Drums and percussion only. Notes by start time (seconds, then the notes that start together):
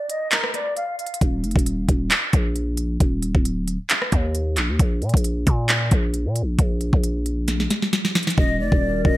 0.10 closed hi-hat
0.31 clap, closed hi-hat
0.44 cross-stick
0.54 cross-stick, closed hi-hat
0.77 closed hi-hat
0.99 closed hi-hat
1.06 closed hi-hat
1.14 closed hi-hat
1.21 kick, closed hi-hat
1.44 closed hi-hat
1.51 closed hi-hat
1.56 kick, closed hi-hat
1.66 closed hi-hat
1.89 kick, closed hi-hat
2.10 clap, closed hi-hat
2.33 kick, closed hi-hat
2.56 closed hi-hat
2.77 closed hi-hat
3.00 kick, closed hi-hat
3.22 closed hi-hat
3.35 kick
3.45 closed hi-hat
3.68 closed hi-hat
3.90 clap, closed hi-hat
4.02 cross-stick
4.12 kick, closed hi-hat
4.35 closed hi-hat
4.57 clap, closed hi-hat
4.79 kick, closed hi-hat
5.02 closed hi-hat
5.09 closed hi-hat
5.14 kick, closed hi-hat
5.24 closed hi-hat
5.47 kick, closed hi-hat
5.69 clap, closed hi-hat
5.91 kick, closed hi-hat
6.14 closed hi-hat
6.36 closed hi-hat
6.59 kick, closed hi-hat
6.81 closed hi-hat
6.93 kick
7.04 closed hi-hat
7.26 closed hi-hat
7.48 snare, closed hi-hat
7.60 snare
7.70 snare, closed hi-hat
7.82 snare
7.93 snare, closed hi-hat
8.05 snare
8.15 snare, closed hi-hat
8.23 closed hi-hat
8.27 snare, closed hi-hat
8.38 kick
8.72 kick
9.05 kick